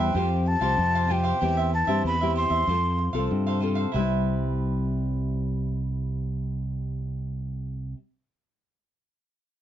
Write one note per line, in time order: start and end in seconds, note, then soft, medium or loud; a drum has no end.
0.00 0.12 E2 medium
0.00 0.12 G2 medium
0.00 0.11 G3 medium
0.00 0.11 B3 medium
0.00 0.11 E4 medium
0.00 0.13 B4 medium
0.00 0.14 C5 medium
0.00 0.12 E5 medium
0.00 0.49 G5 medium
0.14 0.55 F2 loud
0.14 0.75 F3 medium
0.14 0.57 C4 medium
0.14 0.44 F4 soft
0.14 0.57 F4 medium
0.14 0.45 G4 medium
0.14 0.58 G4 medium
0.14 0.45 C5 medium
0.14 0.45 F5 medium
0.45 1.13 A5 medium
0.45 muted cavaquinho stroke soft
0.60 0.74 C2 medium
0.60 1.04 C4 medium
0.60 1.04 F4 medium
0.60 1.05 G4 medium
0.60 0.93 G4 medium
0.60 0.92 C5 medium
0.60 0.92 F5 medium
0.78 1.31 F2 medium
0.78 1.38 C3 medium
0.95 1.08 G4 medium
0.95 1.09 C5 medium
0.95 1.09 F5 medium
1.08 1.36 C4 soft
1.08 1.23 F4 medium
1.08 1.36 F4 soft
1.08 1.24 G4 medium
1.08 1.37 G4 medium
1.08 1.23 C5 soft
1.08 1.22 F5 soft
1.08 1.73 G5 medium
1.23 1.39 G4 medium
1.23 1.40 C5 medium
1.23 1.39 F5 medium
1.41 1.82 E2 medium
1.41 2.01 E3 medium
1.41 1.71 C4 medium
1.41 1.71 E4 medium
1.41 1.55 G4 medium
1.41 1.71 G4 medium
1.41 1.56 C5 soft
1.41 1.56 E5 soft
1.57 1.72 C5 medium
1.57 1.71 E5 medium
1.72 2.03 A5 medium
1.72 muted cavaquinho stroke soft
1.87 2.01 G2 medium
1.87 2.15 C4 medium
1.87 2.15 E4 medium
1.87 2.15 G4 medium
1.87 2.04 C5 medium
1.87 2.02 E5 medium
2.04 2.44 E2 medium
2.04 2.65 E3 medium
2.04 2.19 G4 soft
2.04 2.20 C5 medium
2.04 2.35 B5 loud
2.08 2.20 E5 soft
2.21 2.63 C4 medium
2.21 2.64 E4 medium
2.21 2.64 G4 medium
2.21 2.36 C5 medium
2.21 2.35 E5 medium
2.36 2.50 G4 medium
2.36 2.51 C5 medium
2.36 2.49 E5 medium
2.36 3.27 C6 loud
2.50 2.64 E2 medium
2.50 2.66 C5 medium
2.50 2.65 E5 medium
2.67 3.08 F2 loud
2.67 3.28 F3 soft
2.67 3.10 C4 soft
2.67 2.97 F4 soft
2.67 3.11 F4 medium
2.67 2.97 A4 soft
2.67 3.11 A4 medium
2.67 2.98 C5 soft
2.67 2.98 F5 medium
2.98 muted cavaquinho stroke soft
3.13 3.27 C2 medium
3.13 3.57 C4 medium
3.13 3.57 F4 medium
3.13 3.57 A4 medium
3.13 3.45 A4 medium
3.13 3.45 C5 soft
3.13 3.44 F5 medium
3.31 3.84 G2 medium
3.31 3.91 C3 medium
3.47 3.60 A4 medium
3.47 3.61 C5 medium
3.47 3.61 F5 medium
3.60 3.89 C4 soft
3.60 3.76 F4 soft
3.60 3.89 F4 medium
3.60 3.76 A4 soft
3.60 3.89 A4 medium
3.60 3.75 C5 soft
3.60 3.74 F5 medium
3.75 3.92 A4 soft
3.75 3.92 C5 medium
3.75 3.91 F5 medium
3.92 7.93 C2 medium
3.92 7.97 C3 medium
3.92 7.96 E4 soft
3.92 7.97 B4 medium
3.92 7.97 C5 medium
3.96 7.98 G3 medium
3.96 7.98 E5 medium
4.00 8.00 E4 medium